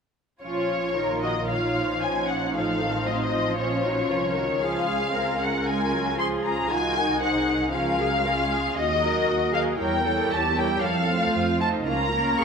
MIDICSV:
0, 0, Header, 1, 6, 480
1, 0, Start_track
1, 0, Key_signature, -5, "minor"
1, 0, Tempo, 524934
1, 400, Time_signature, 4, 2, 24, 8
1, 5194, Tempo, 515907
1, 11487, End_track
2, 0, Start_track
2, 0, Title_t, "Violin section"
2, 0, Program_c, 0, 48
2, 394, Note_on_c, 0, 73, 56
2, 1089, Note_off_c, 0, 73, 0
2, 1125, Note_on_c, 0, 75, 47
2, 1366, Note_on_c, 0, 77, 52
2, 1370, Note_off_c, 0, 75, 0
2, 1840, Note_off_c, 0, 77, 0
2, 1841, Note_on_c, 0, 80, 51
2, 2085, Note_on_c, 0, 78, 45
2, 2086, Note_off_c, 0, 80, 0
2, 2327, Note_on_c, 0, 77, 55
2, 2328, Note_off_c, 0, 78, 0
2, 2800, Note_off_c, 0, 77, 0
2, 2806, Note_on_c, 0, 75, 48
2, 2870, Note_on_c, 0, 77, 37
2, 2872, Note_off_c, 0, 75, 0
2, 2930, Note_on_c, 0, 75, 54
2, 2936, Note_off_c, 0, 77, 0
2, 3281, Note_on_c, 0, 73, 52
2, 3283, Note_off_c, 0, 75, 0
2, 4217, Note_off_c, 0, 73, 0
2, 4233, Note_on_c, 0, 77, 60
2, 4954, Note_off_c, 0, 77, 0
2, 4962, Note_on_c, 0, 78, 47
2, 5197, Note_off_c, 0, 78, 0
2, 5197, Note_on_c, 0, 80, 55
2, 5670, Note_on_c, 0, 84, 53
2, 5673, Note_off_c, 0, 80, 0
2, 5745, Note_off_c, 0, 84, 0
2, 5913, Note_on_c, 0, 82, 53
2, 6145, Note_on_c, 0, 80, 69
2, 6147, Note_off_c, 0, 82, 0
2, 6628, Note_on_c, 0, 78, 55
2, 6631, Note_off_c, 0, 80, 0
2, 7101, Note_off_c, 0, 78, 0
2, 7111, Note_on_c, 0, 77, 59
2, 8048, Note_off_c, 0, 77, 0
2, 8068, Note_on_c, 0, 75, 70
2, 8774, Note_off_c, 0, 75, 0
2, 8785, Note_on_c, 0, 77, 56
2, 8860, Note_off_c, 0, 77, 0
2, 9029, Note_on_c, 0, 79, 63
2, 9500, Note_off_c, 0, 79, 0
2, 9511, Note_on_c, 0, 81, 63
2, 9749, Note_on_c, 0, 79, 64
2, 9750, Note_off_c, 0, 81, 0
2, 9990, Note_off_c, 0, 79, 0
2, 9992, Note_on_c, 0, 77, 75
2, 10706, Note_on_c, 0, 81, 60
2, 10712, Note_off_c, 0, 77, 0
2, 10781, Note_off_c, 0, 81, 0
2, 10954, Note_on_c, 0, 82, 71
2, 11427, Note_off_c, 0, 82, 0
2, 11442, Note_on_c, 0, 85, 68
2, 11487, Note_off_c, 0, 85, 0
2, 11487, End_track
3, 0, Start_track
3, 0, Title_t, "Violin section"
3, 0, Program_c, 1, 48
3, 397, Note_on_c, 1, 73, 36
3, 399, Note_on_c, 1, 65, 34
3, 850, Note_off_c, 1, 73, 0
3, 851, Note_off_c, 1, 65, 0
3, 878, Note_on_c, 1, 65, 35
3, 878, Note_on_c, 1, 70, 35
3, 1358, Note_off_c, 1, 70, 0
3, 1374, Note_on_c, 1, 73, 32
3, 1829, Note_off_c, 1, 65, 0
3, 1838, Note_off_c, 1, 73, 0
3, 1849, Note_on_c, 1, 73, 35
3, 1850, Note_on_c, 1, 65, 34
3, 2320, Note_off_c, 1, 73, 0
3, 2321, Note_off_c, 1, 65, 0
3, 2338, Note_on_c, 1, 69, 33
3, 2343, Note_on_c, 1, 72, 38
3, 2815, Note_off_c, 1, 69, 0
3, 2816, Note_on_c, 1, 65, 38
3, 3768, Note_off_c, 1, 72, 0
3, 3768, Note_on_c, 1, 70, 35
3, 4237, Note_off_c, 1, 65, 0
3, 4243, Note_off_c, 1, 70, 0
3, 4248, Note_on_c, 1, 65, 37
3, 4248, Note_on_c, 1, 68, 44
3, 4713, Note_off_c, 1, 65, 0
3, 4725, Note_on_c, 1, 65, 36
3, 5188, Note_off_c, 1, 65, 0
3, 5201, Note_on_c, 1, 65, 36
3, 5670, Note_off_c, 1, 68, 0
3, 5681, Note_on_c, 1, 68, 37
3, 6135, Note_off_c, 1, 65, 0
3, 6146, Note_off_c, 1, 68, 0
3, 6163, Note_on_c, 1, 66, 44
3, 6164, Note_on_c, 1, 68, 42
3, 6394, Note_off_c, 1, 68, 0
3, 6398, Note_on_c, 1, 70, 36
3, 6635, Note_on_c, 1, 72, 41
3, 6636, Note_off_c, 1, 70, 0
3, 6638, Note_on_c, 1, 68, 36
3, 6640, Note_off_c, 1, 66, 0
3, 6864, Note_off_c, 1, 72, 0
3, 6876, Note_on_c, 1, 72, 38
3, 6950, Note_off_c, 1, 72, 0
3, 7108, Note_off_c, 1, 68, 0
3, 7119, Note_on_c, 1, 68, 36
3, 7119, Note_on_c, 1, 70, 37
3, 7584, Note_off_c, 1, 68, 0
3, 7584, Note_off_c, 1, 70, 0
3, 7597, Note_on_c, 1, 68, 38
3, 7601, Note_on_c, 1, 65, 38
3, 8062, Note_off_c, 1, 68, 0
3, 8073, Note_off_c, 1, 65, 0
3, 8306, Note_on_c, 1, 75, 35
3, 8307, Note_on_c, 1, 70, 34
3, 8777, Note_off_c, 1, 75, 0
3, 8778, Note_off_c, 1, 70, 0
3, 8794, Note_on_c, 1, 75, 39
3, 8795, Note_on_c, 1, 70, 39
3, 9014, Note_off_c, 1, 70, 0
3, 9025, Note_on_c, 1, 70, 41
3, 9026, Note_off_c, 1, 75, 0
3, 9028, Note_on_c, 1, 73, 41
3, 9253, Note_off_c, 1, 70, 0
3, 9254, Note_off_c, 1, 73, 0
3, 9264, Note_on_c, 1, 70, 38
3, 9265, Note_on_c, 1, 73, 44
3, 9737, Note_off_c, 1, 70, 0
3, 9738, Note_off_c, 1, 73, 0
3, 9753, Note_on_c, 1, 73, 42
3, 9754, Note_on_c, 1, 70, 34
3, 9987, Note_off_c, 1, 73, 0
3, 9988, Note_off_c, 1, 70, 0
3, 10231, Note_on_c, 1, 65, 35
3, 10232, Note_on_c, 1, 72, 34
3, 10701, Note_off_c, 1, 65, 0
3, 10702, Note_off_c, 1, 72, 0
3, 10713, Note_on_c, 1, 65, 40
3, 10716, Note_on_c, 1, 72, 41
3, 10939, Note_off_c, 1, 65, 0
3, 10950, Note_off_c, 1, 72, 0
3, 10950, Note_on_c, 1, 65, 42
3, 10950, Note_on_c, 1, 70, 38
3, 11188, Note_off_c, 1, 65, 0
3, 11188, Note_off_c, 1, 70, 0
3, 11201, Note_on_c, 1, 65, 38
3, 11204, Note_on_c, 1, 70, 43
3, 11487, Note_off_c, 1, 65, 0
3, 11487, Note_off_c, 1, 70, 0
3, 11487, End_track
4, 0, Start_track
4, 0, Title_t, "Cello section"
4, 0, Program_c, 2, 48
4, 393, Note_on_c, 2, 65, 44
4, 848, Note_off_c, 2, 65, 0
4, 883, Note_on_c, 2, 70, 42
4, 1124, Note_on_c, 2, 66, 39
4, 1127, Note_off_c, 2, 70, 0
4, 1197, Note_off_c, 2, 66, 0
4, 1366, Note_on_c, 2, 65, 36
4, 1840, Note_off_c, 2, 65, 0
4, 1848, Note_on_c, 2, 61, 36
4, 2319, Note_off_c, 2, 61, 0
4, 2323, Note_on_c, 2, 65, 39
4, 2396, Note_off_c, 2, 65, 0
4, 2564, Note_on_c, 2, 60, 40
4, 3269, Note_off_c, 2, 60, 0
4, 3280, Note_on_c, 2, 61, 41
4, 3516, Note_off_c, 2, 61, 0
4, 3519, Note_on_c, 2, 63, 35
4, 3592, Note_off_c, 2, 63, 0
4, 3757, Note_on_c, 2, 65, 41
4, 3830, Note_off_c, 2, 65, 0
4, 3991, Note_on_c, 2, 66, 39
4, 4064, Note_off_c, 2, 66, 0
4, 4230, Note_on_c, 2, 68, 44
4, 4704, Note_off_c, 2, 68, 0
4, 4710, Note_on_c, 2, 70, 48
4, 5648, Note_off_c, 2, 70, 0
4, 5667, Note_on_c, 2, 68, 45
4, 6143, Note_on_c, 2, 65, 50
4, 6148, Note_off_c, 2, 68, 0
4, 6386, Note_on_c, 2, 63, 42
4, 6389, Note_off_c, 2, 65, 0
4, 7106, Note_on_c, 2, 65, 50
4, 7110, Note_off_c, 2, 63, 0
4, 7346, Note_on_c, 2, 68, 44
4, 7349, Note_off_c, 2, 65, 0
4, 7421, Note_off_c, 2, 68, 0
4, 7588, Note_on_c, 2, 70, 48
4, 7663, Note_off_c, 2, 70, 0
4, 7823, Note_on_c, 2, 68, 46
4, 8058, Note_on_c, 2, 66, 53
4, 8060, Note_off_c, 2, 68, 0
4, 8295, Note_on_c, 2, 70, 54
4, 8303, Note_off_c, 2, 66, 0
4, 8536, Note_on_c, 2, 66, 50
4, 8542, Note_off_c, 2, 70, 0
4, 8778, Note_on_c, 2, 68, 47
4, 8782, Note_off_c, 2, 66, 0
4, 9020, Note_on_c, 2, 70, 51
4, 9022, Note_off_c, 2, 68, 0
4, 9259, Note_off_c, 2, 70, 0
4, 9261, Note_on_c, 2, 69, 45
4, 9505, Note_off_c, 2, 69, 0
4, 9505, Note_on_c, 2, 67, 51
4, 9988, Note_off_c, 2, 67, 0
4, 9990, Note_on_c, 2, 69, 58
4, 10471, Note_off_c, 2, 69, 0
4, 10472, Note_on_c, 2, 65, 51
4, 10707, Note_off_c, 2, 65, 0
4, 10710, Note_on_c, 2, 63, 46
4, 10951, Note_on_c, 2, 65, 52
4, 10952, Note_off_c, 2, 63, 0
4, 11188, Note_on_c, 2, 70, 46
4, 11194, Note_off_c, 2, 65, 0
4, 11428, Note_off_c, 2, 70, 0
4, 11433, Note_on_c, 2, 68, 49
4, 11487, Note_off_c, 2, 68, 0
4, 11487, End_track
5, 0, Start_track
5, 0, Title_t, "Viola section"
5, 0, Program_c, 3, 48
5, 397, Note_on_c, 3, 53, 32
5, 398, Note_on_c, 3, 61, 34
5, 850, Note_off_c, 3, 53, 0
5, 851, Note_off_c, 3, 61, 0
5, 879, Note_on_c, 3, 51, 35
5, 882, Note_on_c, 3, 65, 31
5, 1117, Note_off_c, 3, 65, 0
5, 1128, Note_on_c, 3, 65, 28
5, 1201, Note_off_c, 3, 65, 0
5, 1354, Note_off_c, 3, 51, 0
5, 1365, Note_on_c, 3, 51, 37
5, 1365, Note_on_c, 3, 63, 34
5, 1438, Note_off_c, 3, 51, 0
5, 1613, Note_on_c, 3, 53, 39
5, 2317, Note_off_c, 3, 53, 0
5, 2334, Note_on_c, 3, 53, 35
5, 2568, Note_off_c, 3, 53, 0
5, 2572, Note_on_c, 3, 51, 41
5, 2811, Note_on_c, 3, 54, 36
5, 2812, Note_off_c, 3, 51, 0
5, 3050, Note_off_c, 3, 54, 0
5, 3053, Note_on_c, 3, 53, 34
5, 3247, Note_off_c, 3, 63, 0
5, 3276, Note_off_c, 3, 53, 0
5, 3287, Note_on_c, 3, 53, 35
5, 3291, Note_on_c, 3, 61, 30
5, 3519, Note_off_c, 3, 53, 0
5, 3524, Note_on_c, 3, 54, 40
5, 3762, Note_off_c, 3, 54, 0
5, 3763, Note_on_c, 3, 53, 38
5, 4000, Note_on_c, 3, 51, 42
5, 4001, Note_off_c, 3, 53, 0
5, 4225, Note_off_c, 3, 61, 0
5, 4234, Note_on_c, 3, 53, 42
5, 4236, Note_on_c, 3, 61, 37
5, 4240, Note_off_c, 3, 51, 0
5, 4476, Note_off_c, 3, 53, 0
5, 4478, Note_on_c, 3, 56, 38
5, 4707, Note_off_c, 3, 61, 0
5, 4716, Note_on_c, 3, 60, 33
5, 4956, Note_off_c, 3, 60, 0
5, 4956, Note_on_c, 3, 61, 38
5, 5182, Note_off_c, 3, 56, 0
5, 5193, Note_on_c, 3, 56, 39
5, 5428, Note_off_c, 3, 56, 0
5, 5432, Note_on_c, 3, 54, 45
5, 5668, Note_on_c, 3, 53, 37
5, 5670, Note_off_c, 3, 54, 0
5, 6139, Note_off_c, 3, 53, 0
5, 6147, Note_on_c, 3, 63, 41
5, 6148, Note_on_c, 3, 51, 38
5, 6150, Note_off_c, 3, 61, 0
5, 6619, Note_off_c, 3, 63, 0
5, 6620, Note_off_c, 3, 51, 0
5, 6630, Note_on_c, 3, 63, 37
5, 6631, Note_on_c, 3, 51, 42
5, 7102, Note_off_c, 3, 63, 0
5, 7103, Note_off_c, 3, 51, 0
5, 7109, Note_on_c, 3, 61, 36
5, 7110, Note_on_c, 3, 53, 42
5, 7343, Note_on_c, 3, 54, 45
5, 7351, Note_off_c, 3, 53, 0
5, 7576, Note_off_c, 3, 61, 0
5, 7584, Note_on_c, 3, 56, 42
5, 7586, Note_off_c, 3, 54, 0
5, 7587, Note_on_c, 3, 61, 41
5, 8057, Note_off_c, 3, 61, 0
5, 8065, Note_off_c, 3, 56, 0
5, 8299, Note_on_c, 3, 54, 44
5, 8299, Note_on_c, 3, 66, 41
5, 8774, Note_off_c, 3, 54, 0
5, 8774, Note_off_c, 3, 66, 0
5, 8783, Note_on_c, 3, 54, 32
5, 8785, Note_on_c, 3, 66, 32
5, 9020, Note_off_c, 3, 54, 0
5, 9020, Note_on_c, 3, 55, 35
5, 9021, Note_off_c, 3, 66, 0
5, 9021, Note_on_c, 3, 64, 40
5, 9255, Note_off_c, 3, 64, 0
5, 9256, Note_off_c, 3, 55, 0
5, 9266, Note_on_c, 3, 64, 49
5, 9267, Note_on_c, 3, 55, 39
5, 9736, Note_off_c, 3, 55, 0
5, 9738, Note_off_c, 3, 64, 0
5, 9747, Note_on_c, 3, 55, 42
5, 9750, Note_on_c, 3, 64, 45
5, 9984, Note_off_c, 3, 55, 0
5, 9986, Note_off_c, 3, 64, 0
5, 10231, Note_on_c, 3, 60, 41
5, 10232, Note_on_c, 3, 57, 45
5, 10700, Note_off_c, 3, 57, 0
5, 10702, Note_off_c, 3, 60, 0
5, 10711, Note_on_c, 3, 57, 38
5, 10711, Note_on_c, 3, 60, 34
5, 10948, Note_off_c, 3, 57, 0
5, 10948, Note_off_c, 3, 60, 0
5, 10949, Note_on_c, 3, 61, 42
5, 10950, Note_on_c, 3, 58, 37
5, 11178, Note_off_c, 3, 61, 0
5, 11179, Note_off_c, 3, 58, 0
5, 11189, Note_on_c, 3, 61, 47
5, 11190, Note_on_c, 3, 58, 42
5, 11487, Note_off_c, 3, 58, 0
5, 11487, Note_off_c, 3, 61, 0
5, 11487, End_track
6, 0, Start_track
6, 0, Title_t, "Double bass section"
6, 0, Program_c, 4, 48
6, 404, Note_on_c, 4, 34, 38
6, 2297, Note_off_c, 4, 34, 0
6, 2328, Note_on_c, 4, 33, 39
6, 3282, Note_on_c, 4, 34, 34
6, 3285, Note_off_c, 4, 33, 0
6, 3759, Note_off_c, 4, 34, 0
6, 3765, Note_on_c, 4, 36, 38
6, 4231, Note_off_c, 4, 36, 0
6, 4238, Note_on_c, 4, 37, 39
6, 6113, Note_off_c, 4, 37, 0
6, 6146, Note_on_c, 4, 36, 46
6, 7092, Note_off_c, 4, 36, 0
6, 7114, Note_on_c, 4, 37, 41
6, 8067, Note_on_c, 4, 39, 47
6, 8069, Note_off_c, 4, 37, 0
6, 8491, Note_off_c, 4, 39, 0
6, 8548, Note_on_c, 4, 39, 44
6, 8971, Note_off_c, 4, 39, 0
6, 9026, Note_on_c, 4, 40, 45
6, 9451, Note_off_c, 4, 40, 0
6, 9507, Note_on_c, 4, 40, 54
6, 9932, Note_off_c, 4, 40, 0
6, 9988, Note_on_c, 4, 41, 53
6, 10414, Note_off_c, 4, 41, 0
6, 10471, Note_on_c, 4, 41, 47
6, 10896, Note_off_c, 4, 41, 0
6, 10951, Note_on_c, 4, 37, 47
6, 11378, Note_off_c, 4, 37, 0
6, 11435, Note_on_c, 4, 37, 52
6, 11487, Note_off_c, 4, 37, 0
6, 11487, End_track
0, 0, End_of_file